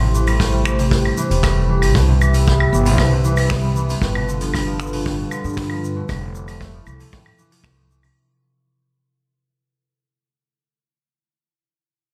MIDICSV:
0, 0, Header, 1, 5, 480
1, 0, Start_track
1, 0, Tempo, 517241
1, 1813, Time_signature, 4, 2, 24, 8
1, 11259, End_track
2, 0, Start_track
2, 0, Title_t, "Analog synth pad"
2, 0, Program_c, 0, 89
2, 0, Note_on_c, 0, 57, 76
2, 0, Note_on_c, 0, 64, 83
2, 0, Note_on_c, 0, 67, 72
2, 0, Note_on_c, 0, 72, 88
2, 1776, Note_off_c, 0, 64, 0
2, 1793, Note_off_c, 0, 57, 0
2, 1795, Note_off_c, 0, 72, 0
2, 1812, Note_on_c, 0, 76, 81
2, 1814, Note_on_c, 0, 71, 71
2, 3696, Note_off_c, 0, 67, 0
2, 3714, Note_off_c, 0, 76, 0
2, 3732, Note_on_c, 0, 55, 83
2, 3734, Note_on_c, 0, 65, 69
2, 3734, Note_on_c, 0, 69, 71
2, 5617, Note_off_c, 0, 71, 0
2, 5633, Note_off_c, 0, 55, 0
2, 5634, Note_off_c, 0, 65, 0
2, 5634, Note_off_c, 0, 69, 0
2, 5655, Note_on_c, 0, 69, 87
2, 5658, Note_on_c, 0, 64, 82
2, 7555, Note_off_c, 0, 69, 0
2, 7556, Note_off_c, 0, 64, 0
2, 11259, End_track
3, 0, Start_track
3, 0, Title_t, "Harp"
3, 0, Program_c, 1, 46
3, 0, Note_on_c, 1, 57, 72
3, 0, Note_on_c, 1, 60, 71
3, 14, Note_on_c, 1, 48, 78
3, 133, Note_on_c, 1, 52, 72
3, 254, Note_on_c, 1, 55, 77
3, 368, Note_off_c, 1, 57, 0
3, 372, Note_on_c, 1, 57, 82
3, 481, Note_off_c, 1, 55, 0
3, 492, Note_on_c, 1, 55, 69
3, 601, Note_off_c, 1, 52, 0
3, 612, Note_on_c, 1, 52, 74
3, 720, Note_off_c, 1, 48, 0
3, 731, Note_on_c, 1, 48, 99
3, 780, Note_off_c, 1, 52, 0
3, 851, Note_on_c, 1, 45, 75
3, 900, Note_off_c, 1, 48, 0
3, 971, Note_on_c, 1, 48, 77
3, 1020, Note_off_c, 1, 45, 0
3, 1091, Note_on_c, 1, 52, 99
3, 1199, Note_off_c, 1, 55, 0
3, 1211, Note_on_c, 1, 55, 72
3, 1328, Note_off_c, 1, 57, 0
3, 1332, Note_on_c, 1, 57, 75
3, 1440, Note_off_c, 1, 55, 0
3, 1451, Note_on_c, 1, 55, 71
3, 1561, Note_off_c, 1, 52, 0
3, 1572, Note_on_c, 1, 52, 80
3, 1680, Note_off_c, 1, 48, 0
3, 1691, Note_on_c, 1, 48, 95
3, 1740, Note_off_c, 1, 52, 0
3, 1811, Note_on_c, 1, 47, 88
3, 1860, Note_off_c, 1, 48, 0
3, 1860, Note_off_c, 1, 55, 0
3, 1867, Note_off_c, 1, 60, 0
3, 1932, Note_on_c, 1, 48, 80
3, 1980, Note_off_c, 1, 47, 0
3, 2050, Note_on_c, 1, 52, 74
3, 2170, Note_on_c, 1, 55, 73
3, 2291, Note_on_c, 1, 59, 89
3, 2400, Note_off_c, 1, 55, 0
3, 2412, Note_on_c, 1, 55, 78
3, 2520, Note_off_c, 1, 52, 0
3, 2531, Note_on_c, 1, 52, 78
3, 2641, Note_off_c, 1, 48, 0
3, 2652, Note_on_c, 1, 48, 104
3, 2700, Note_off_c, 1, 52, 0
3, 2708, Note_off_c, 1, 59, 0
3, 2772, Note_on_c, 1, 47, 83
3, 2820, Note_off_c, 1, 48, 0
3, 2893, Note_on_c, 1, 48, 80
3, 2940, Note_off_c, 1, 47, 0
3, 3013, Note_on_c, 1, 52, 95
3, 3123, Note_off_c, 1, 55, 0
3, 3135, Note_on_c, 1, 55, 77
3, 3254, Note_on_c, 1, 59, 79
3, 3363, Note_off_c, 1, 55, 0
3, 3374, Note_on_c, 1, 55, 74
3, 3483, Note_off_c, 1, 52, 0
3, 3494, Note_on_c, 1, 52, 77
3, 3603, Note_off_c, 1, 48, 0
3, 3614, Note_on_c, 1, 48, 97
3, 3660, Note_off_c, 1, 52, 0
3, 3669, Note_off_c, 1, 59, 0
3, 3734, Note_on_c, 1, 45, 83
3, 3780, Note_off_c, 1, 48, 0
3, 3780, Note_off_c, 1, 55, 0
3, 3854, Note_on_c, 1, 47, 83
3, 3900, Note_off_c, 1, 45, 0
3, 3974, Note_on_c, 1, 50, 74
3, 4020, Note_off_c, 1, 47, 0
3, 4093, Note_on_c, 1, 53, 73
3, 4213, Note_on_c, 1, 55, 84
3, 4320, Note_off_c, 1, 53, 0
3, 4331, Note_on_c, 1, 53, 77
3, 4421, Note_off_c, 1, 57, 0
3, 4443, Note_off_c, 1, 50, 0
3, 4454, Note_on_c, 1, 50, 79
3, 4500, Note_off_c, 1, 53, 0
3, 4500, Note_off_c, 1, 55, 0
3, 4573, Note_on_c, 1, 47, 106
3, 4620, Note_off_c, 1, 50, 0
3, 4694, Note_on_c, 1, 45, 84
3, 4740, Note_off_c, 1, 47, 0
3, 4814, Note_on_c, 1, 47, 77
3, 4860, Note_off_c, 1, 45, 0
3, 4933, Note_on_c, 1, 50, 100
3, 4980, Note_off_c, 1, 47, 0
3, 5052, Note_on_c, 1, 53, 74
3, 5174, Note_on_c, 1, 55, 87
3, 5281, Note_off_c, 1, 53, 0
3, 5292, Note_on_c, 1, 53, 76
3, 5400, Note_off_c, 1, 50, 0
3, 5411, Note_on_c, 1, 50, 74
3, 5460, Note_off_c, 1, 53, 0
3, 5460, Note_off_c, 1, 55, 0
3, 5532, Note_on_c, 1, 47, 100
3, 5580, Note_off_c, 1, 50, 0
3, 5651, Note_on_c, 1, 45, 84
3, 5700, Note_off_c, 1, 47, 0
3, 5772, Note_on_c, 1, 48, 86
3, 5820, Note_off_c, 1, 45, 0
3, 5893, Note_on_c, 1, 52, 79
3, 6014, Note_on_c, 1, 53, 80
3, 6134, Note_on_c, 1, 57, 92
3, 6241, Note_off_c, 1, 53, 0
3, 6252, Note_on_c, 1, 53, 73
3, 6362, Note_off_c, 1, 52, 0
3, 6374, Note_on_c, 1, 52, 78
3, 6482, Note_off_c, 1, 48, 0
3, 6493, Note_on_c, 1, 48, 100
3, 6540, Note_off_c, 1, 52, 0
3, 6540, Note_off_c, 1, 53, 0
3, 6612, Note_on_c, 1, 45, 86
3, 6660, Note_off_c, 1, 48, 0
3, 6734, Note_on_c, 1, 48, 77
3, 6780, Note_off_c, 1, 45, 0
3, 6853, Note_on_c, 1, 52, 108
3, 6972, Note_on_c, 1, 53, 77
3, 7088, Note_off_c, 1, 57, 0
3, 7091, Note_on_c, 1, 57, 85
3, 7201, Note_off_c, 1, 53, 0
3, 7212, Note_on_c, 1, 53, 79
3, 7320, Note_off_c, 1, 52, 0
3, 7331, Note_on_c, 1, 52, 78
3, 7440, Note_off_c, 1, 48, 0
3, 7451, Note_on_c, 1, 48, 100
3, 7500, Note_off_c, 1, 52, 0
3, 7500, Note_off_c, 1, 53, 0
3, 7620, Note_off_c, 1, 48, 0
3, 10180, Note_off_c, 1, 57, 0
3, 11259, End_track
4, 0, Start_track
4, 0, Title_t, "Upright bass"
4, 0, Program_c, 2, 32
4, 0, Note_on_c, 2, 33, 95
4, 1018, Note_off_c, 2, 33, 0
4, 1210, Note_on_c, 2, 28, 82
4, 1809, Note_off_c, 2, 28, 0
4, 1809, Note_on_c, 2, 36, 90
4, 2458, Note_off_c, 2, 36, 0
4, 2530, Note_on_c, 2, 31, 105
4, 2767, Note_off_c, 2, 31, 0
4, 2767, Note_on_c, 2, 36, 92
4, 3657, Note_off_c, 2, 36, 0
4, 3726, Note_on_c, 2, 31, 94
4, 4856, Note_off_c, 2, 31, 0
4, 5052, Note_on_c, 2, 43, 89
4, 5579, Note_off_c, 2, 43, 0
4, 5652, Note_on_c, 2, 29, 97
4, 6299, Note_off_c, 2, 29, 0
4, 6375, Note_on_c, 2, 36, 101
4, 6522, Note_off_c, 2, 36, 0
4, 7086, Note_on_c, 2, 36, 99
4, 7496, Note_off_c, 2, 36, 0
4, 11259, End_track
5, 0, Start_track
5, 0, Title_t, "Drums"
5, 137, Note_on_c, 9, 82, 86
5, 229, Note_off_c, 9, 82, 0
5, 249, Note_on_c, 9, 46, 59
5, 253, Note_on_c, 9, 82, 54
5, 256, Note_on_c, 9, 75, 73
5, 341, Note_off_c, 9, 46, 0
5, 345, Note_off_c, 9, 82, 0
5, 349, Note_off_c, 9, 75, 0
5, 370, Note_on_c, 9, 36, 95
5, 374, Note_on_c, 9, 46, 57
5, 379, Note_on_c, 9, 82, 52
5, 463, Note_off_c, 9, 36, 0
5, 466, Note_off_c, 9, 46, 0
5, 472, Note_off_c, 9, 82, 0
5, 608, Note_on_c, 9, 26, 74
5, 608, Note_on_c, 9, 75, 83
5, 618, Note_on_c, 9, 82, 90
5, 701, Note_off_c, 9, 26, 0
5, 701, Note_off_c, 9, 75, 0
5, 711, Note_off_c, 9, 82, 0
5, 729, Note_on_c, 9, 46, 62
5, 736, Note_on_c, 9, 82, 64
5, 822, Note_off_c, 9, 46, 0
5, 829, Note_off_c, 9, 82, 0
5, 848, Note_on_c, 9, 36, 101
5, 853, Note_on_c, 9, 82, 45
5, 857, Note_on_c, 9, 46, 62
5, 941, Note_off_c, 9, 36, 0
5, 946, Note_off_c, 9, 82, 0
5, 950, Note_off_c, 9, 46, 0
5, 979, Note_on_c, 9, 75, 69
5, 1071, Note_off_c, 9, 75, 0
5, 1088, Note_on_c, 9, 82, 96
5, 1181, Note_off_c, 9, 82, 0
5, 1214, Note_on_c, 9, 46, 62
5, 1219, Note_on_c, 9, 82, 59
5, 1307, Note_off_c, 9, 46, 0
5, 1312, Note_off_c, 9, 82, 0
5, 1329, Note_on_c, 9, 36, 115
5, 1334, Note_on_c, 9, 26, 72
5, 1334, Note_on_c, 9, 46, 56
5, 1339, Note_on_c, 9, 75, 76
5, 1343, Note_on_c, 9, 82, 47
5, 1421, Note_off_c, 9, 36, 0
5, 1426, Note_off_c, 9, 26, 0
5, 1427, Note_off_c, 9, 46, 0
5, 1431, Note_off_c, 9, 75, 0
5, 1436, Note_off_c, 9, 82, 0
5, 1690, Note_on_c, 9, 75, 81
5, 1691, Note_on_c, 9, 46, 64
5, 1695, Note_on_c, 9, 82, 52
5, 1782, Note_off_c, 9, 75, 0
5, 1784, Note_off_c, 9, 46, 0
5, 1788, Note_off_c, 9, 82, 0
5, 1810, Note_on_c, 9, 36, 110
5, 1816, Note_on_c, 9, 82, 46
5, 1818, Note_on_c, 9, 46, 57
5, 1903, Note_off_c, 9, 36, 0
5, 1909, Note_off_c, 9, 82, 0
5, 1911, Note_off_c, 9, 46, 0
5, 2056, Note_on_c, 9, 75, 78
5, 2056, Note_on_c, 9, 82, 76
5, 2149, Note_off_c, 9, 75, 0
5, 2149, Note_off_c, 9, 82, 0
5, 2171, Note_on_c, 9, 46, 65
5, 2171, Note_on_c, 9, 82, 51
5, 2263, Note_off_c, 9, 46, 0
5, 2264, Note_off_c, 9, 82, 0
5, 2291, Note_on_c, 9, 82, 47
5, 2298, Note_on_c, 9, 36, 93
5, 2384, Note_off_c, 9, 82, 0
5, 2391, Note_off_c, 9, 36, 0
5, 2417, Note_on_c, 9, 75, 85
5, 2509, Note_off_c, 9, 75, 0
5, 2541, Note_on_c, 9, 82, 87
5, 2634, Note_off_c, 9, 82, 0
5, 2653, Note_on_c, 9, 82, 57
5, 2654, Note_on_c, 9, 46, 66
5, 2745, Note_off_c, 9, 82, 0
5, 2746, Note_off_c, 9, 46, 0
5, 2767, Note_on_c, 9, 75, 82
5, 2768, Note_on_c, 9, 36, 109
5, 2771, Note_on_c, 9, 82, 49
5, 2772, Note_on_c, 9, 46, 59
5, 2860, Note_off_c, 9, 36, 0
5, 2860, Note_off_c, 9, 75, 0
5, 2864, Note_off_c, 9, 82, 0
5, 2865, Note_off_c, 9, 46, 0
5, 3011, Note_on_c, 9, 82, 83
5, 3104, Note_off_c, 9, 82, 0
5, 3124, Note_on_c, 9, 82, 60
5, 3130, Note_on_c, 9, 75, 84
5, 3136, Note_on_c, 9, 46, 71
5, 3217, Note_off_c, 9, 82, 0
5, 3223, Note_off_c, 9, 75, 0
5, 3228, Note_off_c, 9, 46, 0
5, 3247, Note_on_c, 9, 46, 60
5, 3248, Note_on_c, 9, 26, 80
5, 3251, Note_on_c, 9, 82, 53
5, 3256, Note_on_c, 9, 36, 111
5, 3340, Note_off_c, 9, 26, 0
5, 3340, Note_off_c, 9, 46, 0
5, 3344, Note_off_c, 9, 82, 0
5, 3349, Note_off_c, 9, 36, 0
5, 3489, Note_on_c, 9, 82, 84
5, 3582, Note_off_c, 9, 82, 0
5, 3615, Note_on_c, 9, 82, 53
5, 3618, Note_on_c, 9, 46, 64
5, 3707, Note_off_c, 9, 82, 0
5, 3711, Note_off_c, 9, 46, 0
5, 3727, Note_on_c, 9, 36, 98
5, 3732, Note_on_c, 9, 46, 57
5, 3732, Note_on_c, 9, 82, 51
5, 3820, Note_off_c, 9, 36, 0
5, 3825, Note_off_c, 9, 46, 0
5, 3825, Note_off_c, 9, 82, 0
5, 3855, Note_on_c, 9, 75, 76
5, 3948, Note_off_c, 9, 75, 0
5, 3979, Note_on_c, 9, 82, 84
5, 4072, Note_off_c, 9, 82, 0
5, 4089, Note_on_c, 9, 46, 65
5, 4091, Note_on_c, 9, 82, 52
5, 4182, Note_off_c, 9, 46, 0
5, 4184, Note_off_c, 9, 82, 0
5, 4209, Note_on_c, 9, 75, 85
5, 4216, Note_on_c, 9, 82, 49
5, 4217, Note_on_c, 9, 36, 85
5, 4220, Note_on_c, 9, 46, 67
5, 4302, Note_off_c, 9, 75, 0
5, 4309, Note_off_c, 9, 82, 0
5, 4310, Note_off_c, 9, 36, 0
5, 4312, Note_off_c, 9, 46, 0
5, 4451, Note_on_c, 9, 26, 80
5, 4458, Note_on_c, 9, 82, 81
5, 4515, Note_off_c, 9, 82, 0
5, 4515, Note_on_c, 9, 82, 63
5, 4544, Note_off_c, 9, 26, 0
5, 4573, Note_on_c, 9, 46, 69
5, 4608, Note_off_c, 9, 82, 0
5, 4666, Note_off_c, 9, 46, 0
5, 4690, Note_on_c, 9, 46, 66
5, 4696, Note_on_c, 9, 36, 99
5, 4698, Note_on_c, 9, 82, 49
5, 4783, Note_off_c, 9, 46, 0
5, 4789, Note_off_c, 9, 36, 0
5, 4790, Note_off_c, 9, 82, 0
5, 4931, Note_on_c, 9, 75, 96
5, 4933, Note_on_c, 9, 82, 92
5, 5024, Note_off_c, 9, 75, 0
5, 5025, Note_off_c, 9, 82, 0
5, 5051, Note_on_c, 9, 82, 58
5, 5091, Note_off_c, 9, 82, 0
5, 5091, Note_on_c, 9, 82, 46
5, 5131, Note_off_c, 9, 82, 0
5, 5131, Note_on_c, 9, 82, 36
5, 5169, Note_on_c, 9, 46, 59
5, 5170, Note_on_c, 9, 36, 102
5, 5173, Note_off_c, 9, 46, 0
5, 5173, Note_on_c, 9, 46, 65
5, 5174, Note_on_c, 9, 26, 71
5, 5224, Note_off_c, 9, 82, 0
5, 5262, Note_off_c, 9, 36, 0
5, 5266, Note_off_c, 9, 46, 0
5, 5267, Note_off_c, 9, 26, 0
5, 5286, Note_on_c, 9, 75, 79
5, 5379, Note_off_c, 9, 75, 0
5, 5422, Note_on_c, 9, 82, 75
5, 5514, Note_off_c, 9, 82, 0
5, 5649, Note_on_c, 9, 82, 57
5, 5653, Note_on_c, 9, 36, 109
5, 5654, Note_on_c, 9, 46, 72
5, 5657, Note_off_c, 9, 46, 0
5, 5657, Note_on_c, 9, 46, 61
5, 5657, Note_on_c, 9, 75, 89
5, 5742, Note_off_c, 9, 82, 0
5, 5745, Note_off_c, 9, 36, 0
5, 5750, Note_off_c, 9, 46, 0
5, 5750, Note_off_c, 9, 75, 0
5, 5893, Note_on_c, 9, 82, 95
5, 5986, Note_off_c, 9, 82, 0
5, 6011, Note_on_c, 9, 82, 50
5, 6013, Note_on_c, 9, 75, 68
5, 6014, Note_on_c, 9, 46, 71
5, 6104, Note_off_c, 9, 82, 0
5, 6106, Note_off_c, 9, 75, 0
5, 6107, Note_off_c, 9, 46, 0
5, 6132, Note_on_c, 9, 36, 112
5, 6135, Note_on_c, 9, 46, 54
5, 6137, Note_on_c, 9, 82, 50
5, 6224, Note_off_c, 9, 36, 0
5, 6228, Note_off_c, 9, 46, 0
5, 6230, Note_off_c, 9, 82, 0
5, 6370, Note_on_c, 9, 82, 74
5, 6372, Note_on_c, 9, 75, 76
5, 6462, Note_off_c, 9, 82, 0
5, 6465, Note_off_c, 9, 75, 0
5, 6497, Note_on_c, 9, 46, 79
5, 6499, Note_on_c, 9, 82, 55
5, 6590, Note_off_c, 9, 46, 0
5, 6592, Note_off_c, 9, 82, 0
5, 6610, Note_on_c, 9, 82, 57
5, 6614, Note_on_c, 9, 46, 61
5, 6617, Note_on_c, 9, 36, 118
5, 6703, Note_off_c, 9, 82, 0
5, 6706, Note_off_c, 9, 46, 0
5, 6709, Note_off_c, 9, 36, 0
5, 6737, Note_on_c, 9, 75, 84
5, 6830, Note_off_c, 9, 75, 0
5, 6853, Note_on_c, 9, 82, 84
5, 6946, Note_off_c, 9, 82, 0
5, 6977, Note_on_c, 9, 46, 81
5, 6980, Note_on_c, 9, 82, 63
5, 7070, Note_off_c, 9, 46, 0
5, 7072, Note_off_c, 9, 82, 0
5, 7087, Note_on_c, 9, 36, 100
5, 7088, Note_on_c, 9, 75, 77
5, 7094, Note_on_c, 9, 26, 77
5, 7096, Note_on_c, 9, 82, 50
5, 7097, Note_on_c, 9, 46, 65
5, 7180, Note_off_c, 9, 36, 0
5, 7181, Note_off_c, 9, 75, 0
5, 7187, Note_off_c, 9, 26, 0
5, 7189, Note_off_c, 9, 82, 0
5, 7190, Note_off_c, 9, 46, 0
5, 7339, Note_on_c, 9, 82, 86
5, 7432, Note_off_c, 9, 82, 0
5, 7454, Note_on_c, 9, 75, 83
5, 7455, Note_on_c, 9, 82, 57
5, 7460, Note_on_c, 9, 46, 66
5, 7493, Note_off_c, 9, 82, 0
5, 7493, Note_on_c, 9, 82, 46
5, 7547, Note_off_c, 9, 75, 0
5, 7552, Note_off_c, 9, 46, 0
5, 7576, Note_off_c, 9, 82, 0
5, 7576, Note_on_c, 9, 82, 32
5, 7669, Note_off_c, 9, 82, 0
5, 11259, End_track
0, 0, End_of_file